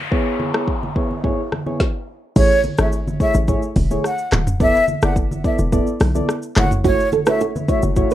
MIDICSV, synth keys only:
0, 0, Header, 1, 2, 480
1, 0, Start_track
1, 0, Key_signature, 3, "major"
1, 0, Tempo, 560748
1, 100, Time_signature, 4, 2, 24, 8
1, 6970, End_track
2, 0, Start_track
2, 0, Title_t, "Synth keys"
2, 0, Program_c, 0, 88
2, 98, Note_on_c, 0, 59, 91
2, 99, Note_on_c, 0, 64, 78
2, 101, Note_on_c, 0, 68, 79
2, 103, Note_on_c, 0, 73, 98
2, 434, Note_off_c, 0, 59, 0
2, 434, Note_off_c, 0, 64, 0
2, 436, Note_off_c, 0, 68, 0
2, 436, Note_off_c, 0, 73, 0
2, 466, Note_on_c, 0, 59, 74
2, 467, Note_on_c, 0, 64, 69
2, 469, Note_on_c, 0, 68, 70
2, 470, Note_on_c, 0, 73, 79
2, 596, Note_off_c, 0, 59, 0
2, 597, Note_off_c, 0, 64, 0
2, 597, Note_off_c, 0, 68, 0
2, 598, Note_off_c, 0, 73, 0
2, 820, Note_on_c, 0, 59, 79
2, 822, Note_on_c, 0, 64, 70
2, 824, Note_on_c, 0, 68, 68
2, 825, Note_on_c, 0, 73, 86
2, 959, Note_off_c, 0, 59, 0
2, 960, Note_off_c, 0, 64, 0
2, 961, Note_off_c, 0, 68, 0
2, 961, Note_off_c, 0, 73, 0
2, 1058, Note_on_c, 0, 59, 88
2, 1061, Note_on_c, 0, 64, 81
2, 1063, Note_on_c, 0, 68, 84
2, 1064, Note_on_c, 0, 73, 99
2, 1198, Note_off_c, 0, 59, 0
2, 1200, Note_off_c, 0, 64, 0
2, 1200, Note_off_c, 0, 68, 0
2, 1201, Note_off_c, 0, 73, 0
2, 1423, Note_on_c, 0, 59, 77
2, 1423, Note_on_c, 0, 64, 71
2, 1426, Note_on_c, 0, 68, 69
2, 1427, Note_on_c, 0, 73, 86
2, 1554, Note_off_c, 0, 59, 0
2, 1554, Note_off_c, 0, 64, 0
2, 1556, Note_off_c, 0, 68, 0
2, 1557, Note_off_c, 0, 73, 0
2, 2019, Note_on_c, 0, 57, 90
2, 2021, Note_on_c, 0, 64, 83
2, 2021, Note_on_c, 0, 68, 79
2, 2025, Note_on_c, 0, 73, 100
2, 2158, Note_off_c, 0, 57, 0
2, 2160, Note_off_c, 0, 64, 0
2, 2160, Note_off_c, 0, 68, 0
2, 2161, Note_off_c, 0, 73, 0
2, 2383, Note_on_c, 0, 57, 77
2, 2384, Note_on_c, 0, 64, 74
2, 2386, Note_on_c, 0, 68, 72
2, 2387, Note_on_c, 0, 73, 83
2, 2514, Note_off_c, 0, 57, 0
2, 2515, Note_off_c, 0, 64, 0
2, 2516, Note_off_c, 0, 68, 0
2, 2517, Note_off_c, 0, 73, 0
2, 2739, Note_on_c, 0, 57, 81
2, 2741, Note_on_c, 0, 64, 73
2, 2742, Note_on_c, 0, 68, 72
2, 2744, Note_on_c, 0, 73, 92
2, 2879, Note_off_c, 0, 57, 0
2, 2879, Note_off_c, 0, 64, 0
2, 2880, Note_off_c, 0, 68, 0
2, 2881, Note_off_c, 0, 73, 0
2, 2979, Note_on_c, 0, 57, 86
2, 2980, Note_on_c, 0, 64, 86
2, 2982, Note_on_c, 0, 68, 83
2, 2984, Note_on_c, 0, 73, 101
2, 3118, Note_off_c, 0, 57, 0
2, 3119, Note_off_c, 0, 64, 0
2, 3120, Note_off_c, 0, 68, 0
2, 3121, Note_off_c, 0, 73, 0
2, 3344, Note_on_c, 0, 57, 79
2, 3347, Note_on_c, 0, 64, 72
2, 3348, Note_on_c, 0, 68, 74
2, 3349, Note_on_c, 0, 73, 92
2, 3475, Note_off_c, 0, 57, 0
2, 3477, Note_off_c, 0, 64, 0
2, 3477, Note_off_c, 0, 68, 0
2, 3478, Note_off_c, 0, 73, 0
2, 3940, Note_on_c, 0, 59, 91
2, 3941, Note_on_c, 0, 64, 82
2, 3943, Note_on_c, 0, 69, 83
2, 3945, Note_on_c, 0, 74, 103
2, 4079, Note_off_c, 0, 59, 0
2, 4080, Note_off_c, 0, 64, 0
2, 4081, Note_off_c, 0, 69, 0
2, 4082, Note_off_c, 0, 74, 0
2, 4305, Note_on_c, 0, 59, 77
2, 4307, Note_on_c, 0, 64, 72
2, 4309, Note_on_c, 0, 69, 69
2, 4310, Note_on_c, 0, 74, 88
2, 4436, Note_off_c, 0, 59, 0
2, 4436, Note_off_c, 0, 64, 0
2, 4437, Note_off_c, 0, 69, 0
2, 4438, Note_off_c, 0, 74, 0
2, 4661, Note_on_c, 0, 59, 82
2, 4663, Note_on_c, 0, 64, 77
2, 4665, Note_on_c, 0, 69, 76
2, 4665, Note_on_c, 0, 74, 90
2, 4800, Note_off_c, 0, 59, 0
2, 4801, Note_off_c, 0, 64, 0
2, 4802, Note_off_c, 0, 69, 0
2, 4802, Note_off_c, 0, 74, 0
2, 4899, Note_on_c, 0, 59, 93
2, 4901, Note_on_c, 0, 64, 84
2, 4902, Note_on_c, 0, 69, 84
2, 4904, Note_on_c, 0, 74, 100
2, 5038, Note_off_c, 0, 59, 0
2, 5039, Note_off_c, 0, 64, 0
2, 5040, Note_off_c, 0, 69, 0
2, 5041, Note_off_c, 0, 74, 0
2, 5263, Note_on_c, 0, 59, 79
2, 5264, Note_on_c, 0, 64, 72
2, 5265, Note_on_c, 0, 69, 75
2, 5269, Note_on_c, 0, 74, 88
2, 5394, Note_off_c, 0, 59, 0
2, 5395, Note_off_c, 0, 64, 0
2, 5395, Note_off_c, 0, 69, 0
2, 5397, Note_off_c, 0, 74, 0
2, 5621, Note_on_c, 0, 57, 79
2, 5622, Note_on_c, 0, 64, 73
2, 5624, Note_on_c, 0, 66, 70
2, 5626, Note_on_c, 0, 73, 85
2, 5759, Note_off_c, 0, 57, 0
2, 5760, Note_off_c, 0, 64, 0
2, 5761, Note_off_c, 0, 66, 0
2, 5762, Note_off_c, 0, 73, 0
2, 5858, Note_on_c, 0, 57, 96
2, 5860, Note_on_c, 0, 64, 83
2, 5861, Note_on_c, 0, 66, 83
2, 5863, Note_on_c, 0, 73, 98
2, 5998, Note_off_c, 0, 57, 0
2, 5999, Note_off_c, 0, 64, 0
2, 6000, Note_off_c, 0, 66, 0
2, 6001, Note_off_c, 0, 73, 0
2, 6222, Note_on_c, 0, 57, 77
2, 6223, Note_on_c, 0, 64, 69
2, 6225, Note_on_c, 0, 66, 72
2, 6226, Note_on_c, 0, 73, 90
2, 6354, Note_off_c, 0, 57, 0
2, 6354, Note_off_c, 0, 64, 0
2, 6355, Note_off_c, 0, 66, 0
2, 6356, Note_off_c, 0, 73, 0
2, 6576, Note_on_c, 0, 57, 86
2, 6578, Note_on_c, 0, 64, 75
2, 6579, Note_on_c, 0, 66, 76
2, 6581, Note_on_c, 0, 73, 90
2, 6717, Note_off_c, 0, 57, 0
2, 6718, Note_off_c, 0, 64, 0
2, 6718, Note_off_c, 0, 66, 0
2, 6720, Note_off_c, 0, 73, 0
2, 6817, Note_on_c, 0, 57, 94
2, 6819, Note_on_c, 0, 64, 88
2, 6820, Note_on_c, 0, 66, 90
2, 6823, Note_on_c, 0, 73, 106
2, 6958, Note_off_c, 0, 57, 0
2, 6959, Note_off_c, 0, 64, 0
2, 6959, Note_off_c, 0, 66, 0
2, 6961, Note_off_c, 0, 73, 0
2, 6970, End_track
0, 0, End_of_file